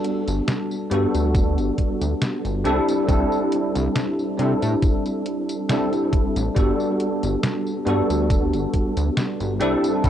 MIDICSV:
0, 0, Header, 1, 4, 480
1, 0, Start_track
1, 0, Key_signature, 1, "major"
1, 0, Tempo, 869565
1, 1703, Time_signature, 4, 2, 24, 8
1, 5573, End_track
2, 0, Start_track
2, 0, Title_t, "Tine electric piano"
2, 0, Program_c, 0, 4
2, 0, Control_c, 0, 64, 127
2, 0, Note_on_c, 0, 55, 78
2, 0, Note_on_c, 0, 59, 70
2, 0, Note_on_c, 0, 62, 72
2, 0, Note_on_c, 0, 66, 69
2, 0, Note_on_c, 0, 69, 87
2, 472, Note_off_c, 0, 55, 0
2, 474, Note_off_c, 0, 59, 0
2, 476, Note_off_c, 0, 62, 0
2, 478, Note_off_c, 0, 66, 0
2, 481, Note_off_c, 0, 69, 0
2, 496, Note_on_c, 0, 55, 85
2, 500, Note_on_c, 0, 59, 76
2, 504, Note_on_c, 0, 62, 75
2, 507, Note_on_c, 0, 66, 74
2, 512, Note_on_c, 0, 69, 89
2, 1433, Note_off_c, 0, 55, 0
2, 1435, Note_off_c, 0, 59, 0
2, 1436, Note_off_c, 0, 62, 0
2, 1438, Note_off_c, 0, 66, 0
2, 1441, Note_off_c, 0, 69, 0
2, 1459, Note_on_c, 0, 55, 100
2, 1462, Note_on_c, 0, 60, 88
2, 1463, Note_on_c, 0, 62, 91
2, 1466, Note_on_c, 0, 64, 85
2, 1468, Note_on_c, 0, 69, 104
2, 1469, Control_c, 0, 64, 0
2, 1580, Control_c, 0, 64, 127
2, 1674, Note_off_c, 0, 55, 0
2, 1675, Note_off_c, 0, 60, 0
2, 1676, Note_off_c, 0, 62, 0
2, 1678, Note_off_c, 0, 64, 0
2, 1679, Note_off_c, 0, 69, 0
2, 1695, Note_on_c, 0, 55, 80
2, 1699, Note_on_c, 0, 60, 74
2, 1703, Note_on_c, 0, 62, 69
2, 1708, Note_on_c, 0, 64, 73
2, 1711, Note_on_c, 0, 69, 89
2, 2392, Note_off_c, 0, 55, 0
2, 2394, Note_off_c, 0, 60, 0
2, 2396, Note_off_c, 0, 62, 0
2, 2399, Note_off_c, 0, 64, 0
2, 2400, Note_off_c, 0, 69, 0
2, 2414, Note_on_c, 0, 55, 79
2, 2418, Note_on_c, 0, 60, 69
2, 2422, Note_on_c, 0, 62, 73
2, 2426, Note_on_c, 0, 64, 69
2, 2430, Note_on_c, 0, 69, 88
2, 3116, Note_off_c, 0, 55, 0
2, 3118, Note_off_c, 0, 60, 0
2, 3120, Note_off_c, 0, 62, 0
2, 3122, Note_off_c, 0, 64, 0
2, 3124, Note_off_c, 0, 69, 0
2, 3140, Note_on_c, 0, 55, 80
2, 3141, Note_on_c, 0, 60, 71
2, 3144, Note_on_c, 0, 62, 67
2, 3146, Note_on_c, 0, 64, 72
2, 3148, Note_on_c, 0, 69, 88
2, 3595, Note_off_c, 0, 55, 0
2, 3595, Note_off_c, 0, 60, 0
2, 3597, Note_off_c, 0, 62, 0
2, 3598, Note_off_c, 0, 64, 0
2, 3599, Note_off_c, 0, 69, 0
2, 3615, Note_on_c, 0, 55, 80
2, 3619, Note_on_c, 0, 59, 73
2, 3623, Note_on_c, 0, 62, 75
2, 3628, Note_on_c, 0, 66, 73
2, 3629, Control_c, 0, 64, 0
2, 3631, Note_on_c, 0, 69, 88
2, 3732, Control_c, 0, 64, 127
2, 4312, Note_off_c, 0, 55, 0
2, 4314, Note_off_c, 0, 59, 0
2, 4316, Note_off_c, 0, 62, 0
2, 4319, Note_off_c, 0, 66, 0
2, 4320, Note_off_c, 0, 69, 0
2, 4334, Note_on_c, 0, 55, 83
2, 4337, Note_on_c, 0, 59, 76
2, 4342, Note_on_c, 0, 62, 80
2, 4346, Note_on_c, 0, 66, 77
2, 4350, Note_on_c, 0, 69, 93
2, 5271, Note_off_c, 0, 55, 0
2, 5273, Note_off_c, 0, 59, 0
2, 5276, Note_off_c, 0, 62, 0
2, 5278, Note_off_c, 0, 66, 0
2, 5280, Note_off_c, 0, 69, 0
2, 5298, Note_on_c, 0, 55, 94
2, 5300, Note_on_c, 0, 60, 92
2, 5302, Note_on_c, 0, 62, 91
2, 5304, Note_on_c, 0, 64, 85
2, 5306, Note_on_c, 0, 69, 109
2, 5308, Control_c, 0, 64, 0
2, 5391, Control_c, 0, 64, 127
2, 5514, Note_off_c, 0, 55, 0
2, 5515, Note_off_c, 0, 60, 0
2, 5516, Note_off_c, 0, 62, 0
2, 5517, Note_off_c, 0, 64, 0
2, 5518, Note_off_c, 0, 69, 0
2, 5534, Note_on_c, 0, 55, 77
2, 5538, Note_on_c, 0, 60, 72
2, 5543, Note_on_c, 0, 62, 70
2, 5547, Note_on_c, 0, 64, 72
2, 5551, Note_on_c, 0, 69, 92
2, 5573, Note_off_c, 0, 55, 0
2, 5573, Note_off_c, 0, 60, 0
2, 5573, Note_off_c, 0, 62, 0
2, 5573, Note_off_c, 0, 64, 0
2, 5573, Note_off_c, 0, 69, 0
2, 5573, End_track
3, 0, Start_track
3, 0, Title_t, "Analog synth bass"
3, 0, Program_c, 1, 38
3, 153, Note_on_c, 1, 31, 102
3, 225, Note_off_c, 1, 31, 0
3, 503, Note_on_c, 1, 43, 97
3, 587, Note_off_c, 1, 43, 0
3, 632, Note_on_c, 1, 38, 94
3, 871, Note_on_c, 1, 31, 99
3, 880, Note_off_c, 1, 38, 0
3, 944, Note_off_c, 1, 31, 0
3, 1112, Note_on_c, 1, 38, 81
3, 1184, Note_off_c, 1, 38, 0
3, 1352, Note_on_c, 1, 31, 77
3, 1463, Note_on_c, 1, 36, 86
3, 1471, Note_off_c, 1, 31, 0
3, 1547, Note_off_c, 1, 36, 0
3, 1703, Note_on_c, 1, 36, 98
3, 1787, Note_off_c, 1, 36, 0
3, 2072, Note_on_c, 1, 36, 107
3, 2144, Note_off_c, 1, 36, 0
3, 2424, Note_on_c, 1, 48, 102
3, 2507, Note_off_c, 1, 48, 0
3, 2553, Note_on_c, 1, 45, 96
3, 2624, Note_off_c, 1, 45, 0
3, 3511, Note_on_c, 1, 33, 99
3, 3584, Note_off_c, 1, 33, 0
3, 3622, Note_on_c, 1, 31, 99
3, 3706, Note_off_c, 1, 31, 0
3, 3990, Note_on_c, 1, 31, 106
3, 4063, Note_off_c, 1, 31, 0
3, 4341, Note_on_c, 1, 43, 99
3, 4426, Note_off_c, 1, 43, 0
3, 4471, Note_on_c, 1, 38, 99
3, 4711, Note_on_c, 1, 31, 100
3, 4719, Note_off_c, 1, 38, 0
3, 4783, Note_off_c, 1, 31, 0
3, 4951, Note_on_c, 1, 38, 84
3, 5024, Note_off_c, 1, 38, 0
3, 5191, Note_on_c, 1, 31, 77
3, 5302, Note_on_c, 1, 36, 86
3, 5310, Note_off_c, 1, 31, 0
3, 5386, Note_off_c, 1, 36, 0
3, 5542, Note_on_c, 1, 36, 94
3, 5573, Note_off_c, 1, 36, 0
3, 5573, End_track
4, 0, Start_track
4, 0, Title_t, "Drums"
4, 24, Note_on_c, 9, 42, 80
4, 79, Note_off_c, 9, 42, 0
4, 152, Note_on_c, 9, 42, 56
4, 152, Note_on_c, 9, 54, 58
4, 207, Note_off_c, 9, 42, 0
4, 207, Note_off_c, 9, 54, 0
4, 264, Note_on_c, 9, 38, 116
4, 264, Note_on_c, 9, 42, 81
4, 264, Note_on_c, 9, 54, 49
4, 319, Note_off_c, 9, 38, 0
4, 319, Note_off_c, 9, 42, 0
4, 319, Note_off_c, 9, 54, 0
4, 393, Note_on_c, 9, 54, 29
4, 448, Note_off_c, 9, 54, 0
4, 504, Note_on_c, 9, 42, 84
4, 559, Note_off_c, 9, 42, 0
4, 632, Note_on_c, 9, 42, 54
4, 632, Note_on_c, 9, 54, 57
4, 687, Note_off_c, 9, 42, 0
4, 687, Note_off_c, 9, 54, 0
4, 743, Note_on_c, 9, 36, 125
4, 744, Note_on_c, 9, 42, 80
4, 744, Note_on_c, 9, 54, 48
4, 798, Note_off_c, 9, 36, 0
4, 799, Note_off_c, 9, 42, 0
4, 799, Note_off_c, 9, 54, 0
4, 872, Note_on_c, 9, 42, 37
4, 872, Note_on_c, 9, 54, 28
4, 927, Note_off_c, 9, 42, 0
4, 927, Note_off_c, 9, 54, 0
4, 983, Note_on_c, 9, 36, 59
4, 983, Note_on_c, 9, 42, 82
4, 1038, Note_off_c, 9, 36, 0
4, 1038, Note_off_c, 9, 42, 0
4, 1112, Note_on_c, 9, 42, 54
4, 1112, Note_on_c, 9, 54, 58
4, 1167, Note_off_c, 9, 42, 0
4, 1167, Note_off_c, 9, 54, 0
4, 1224, Note_on_c, 9, 38, 116
4, 1224, Note_on_c, 9, 42, 81
4, 1224, Note_on_c, 9, 54, 49
4, 1279, Note_off_c, 9, 38, 0
4, 1279, Note_off_c, 9, 42, 0
4, 1279, Note_off_c, 9, 54, 0
4, 1352, Note_on_c, 9, 42, 38
4, 1352, Note_on_c, 9, 54, 28
4, 1407, Note_off_c, 9, 42, 0
4, 1407, Note_off_c, 9, 54, 0
4, 1464, Note_on_c, 9, 42, 80
4, 1519, Note_off_c, 9, 42, 0
4, 1593, Note_on_c, 9, 42, 59
4, 1593, Note_on_c, 9, 54, 58
4, 1648, Note_off_c, 9, 42, 0
4, 1648, Note_off_c, 9, 54, 0
4, 1703, Note_on_c, 9, 36, 116
4, 1704, Note_on_c, 9, 42, 83
4, 1704, Note_on_c, 9, 54, 46
4, 1759, Note_off_c, 9, 36, 0
4, 1759, Note_off_c, 9, 42, 0
4, 1759, Note_off_c, 9, 54, 0
4, 1833, Note_on_c, 9, 54, 28
4, 1888, Note_off_c, 9, 54, 0
4, 1943, Note_on_c, 9, 42, 77
4, 1998, Note_off_c, 9, 42, 0
4, 2072, Note_on_c, 9, 42, 57
4, 2072, Note_on_c, 9, 54, 58
4, 2128, Note_off_c, 9, 42, 0
4, 2128, Note_off_c, 9, 54, 0
4, 2184, Note_on_c, 9, 38, 118
4, 2184, Note_on_c, 9, 42, 82
4, 2184, Note_on_c, 9, 54, 46
4, 2239, Note_off_c, 9, 38, 0
4, 2239, Note_off_c, 9, 42, 0
4, 2239, Note_off_c, 9, 54, 0
4, 2313, Note_on_c, 9, 54, 28
4, 2368, Note_off_c, 9, 54, 0
4, 2424, Note_on_c, 9, 42, 82
4, 2479, Note_off_c, 9, 42, 0
4, 2552, Note_on_c, 9, 42, 53
4, 2552, Note_on_c, 9, 54, 54
4, 2607, Note_off_c, 9, 42, 0
4, 2607, Note_off_c, 9, 54, 0
4, 2663, Note_on_c, 9, 36, 123
4, 2663, Note_on_c, 9, 42, 85
4, 2663, Note_on_c, 9, 54, 48
4, 2718, Note_off_c, 9, 36, 0
4, 2718, Note_off_c, 9, 42, 0
4, 2718, Note_off_c, 9, 54, 0
4, 2792, Note_on_c, 9, 42, 39
4, 2792, Note_on_c, 9, 54, 28
4, 2847, Note_off_c, 9, 42, 0
4, 2847, Note_off_c, 9, 54, 0
4, 2903, Note_on_c, 9, 42, 86
4, 2958, Note_off_c, 9, 42, 0
4, 3032, Note_on_c, 9, 42, 55
4, 3032, Note_on_c, 9, 54, 56
4, 3087, Note_off_c, 9, 42, 0
4, 3087, Note_off_c, 9, 54, 0
4, 3143, Note_on_c, 9, 38, 123
4, 3143, Note_on_c, 9, 42, 83
4, 3143, Note_on_c, 9, 54, 46
4, 3198, Note_off_c, 9, 38, 0
4, 3198, Note_off_c, 9, 42, 0
4, 3198, Note_off_c, 9, 54, 0
4, 3272, Note_on_c, 9, 42, 38
4, 3272, Note_on_c, 9, 54, 28
4, 3327, Note_off_c, 9, 42, 0
4, 3327, Note_off_c, 9, 54, 0
4, 3383, Note_on_c, 9, 36, 106
4, 3383, Note_on_c, 9, 42, 77
4, 3438, Note_off_c, 9, 36, 0
4, 3438, Note_off_c, 9, 42, 0
4, 3512, Note_on_c, 9, 42, 55
4, 3512, Note_on_c, 9, 54, 61
4, 3567, Note_off_c, 9, 42, 0
4, 3567, Note_off_c, 9, 54, 0
4, 3623, Note_on_c, 9, 36, 127
4, 3623, Note_on_c, 9, 42, 81
4, 3623, Note_on_c, 9, 54, 45
4, 3678, Note_off_c, 9, 36, 0
4, 3679, Note_off_c, 9, 42, 0
4, 3679, Note_off_c, 9, 54, 0
4, 3753, Note_on_c, 9, 54, 27
4, 3808, Note_off_c, 9, 54, 0
4, 3864, Note_on_c, 9, 42, 83
4, 3919, Note_off_c, 9, 42, 0
4, 3992, Note_on_c, 9, 42, 55
4, 3992, Note_on_c, 9, 54, 54
4, 4047, Note_off_c, 9, 42, 0
4, 4047, Note_off_c, 9, 54, 0
4, 4103, Note_on_c, 9, 38, 119
4, 4103, Note_on_c, 9, 42, 81
4, 4103, Note_on_c, 9, 54, 44
4, 4158, Note_off_c, 9, 38, 0
4, 4158, Note_off_c, 9, 42, 0
4, 4158, Note_off_c, 9, 54, 0
4, 4232, Note_on_c, 9, 54, 28
4, 4287, Note_off_c, 9, 54, 0
4, 4343, Note_on_c, 9, 42, 78
4, 4398, Note_off_c, 9, 42, 0
4, 4472, Note_on_c, 9, 42, 54
4, 4472, Note_on_c, 9, 54, 54
4, 4527, Note_off_c, 9, 42, 0
4, 4527, Note_off_c, 9, 54, 0
4, 4582, Note_on_c, 9, 36, 121
4, 4583, Note_on_c, 9, 42, 82
4, 4583, Note_on_c, 9, 54, 45
4, 4638, Note_off_c, 9, 36, 0
4, 4638, Note_off_c, 9, 42, 0
4, 4638, Note_off_c, 9, 54, 0
4, 4711, Note_on_c, 9, 42, 37
4, 4711, Note_on_c, 9, 54, 27
4, 4766, Note_off_c, 9, 42, 0
4, 4766, Note_off_c, 9, 54, 0
4, 4822, Note_on_c, 9, 36, 63
4, 4822, Note_on_c, 9, 42, 82
4, 4877, Note_off_c, 9, 42, 0
4, 4878, Note_off_c, 9, 36, 0
4, 4951, Note_on_c, 9, 42, 56
4, 4951, Note_on_c, 9, 54, 52
4, 5006, Note_off_c, 9, 42, 0
4, 5006, Note_off_c, 9, 54, 0
4, 5062, Note_on_c, 9, 38, 126
4, 5062, Note_on_c, 9, 42, 79
4, 5062, Note_on_c, 9, 54, 44
4, 5117, Note_off_c, 9, 38, 0
4, 5117, Note_off_c, 9, 42, 0
4, 5117, Note_off_c, 9, 54, 0
4, 5191, Note_on_c, 9, 42, 38
4, 5191, Note_on_c, 9, 54, 27
4, 5246, Note_off_c, 9, 42, 0
4, 5246, Note_off_c, 9, 54, 0
4, 5303, Note_on_c, 9, 42, 81
4, 5358, Note_off_c, 9, 42, 0
4, 5432, Note_on_c, 9, 42, 54
4, 5432, Note_on_c, 9, 54, 59
4, 5487, Note_off_c, 9, 42, 0
4, 5487, Note_off_c, 9, 54, 0
4, 5542, Note_on_c, 9, 36, 123
4, 5542, Note_on_c, 9, 42, 80
4, 5542, Note_on_c, 9, 54, 43
4, 5573, Note_off_c, 9, 36, 0
4, 5573, Note_off_c, 9, 42, 0
4, 5573, Note_off_c, 9, 54, 0
4, 5573, End_track
0, 0, End_of_file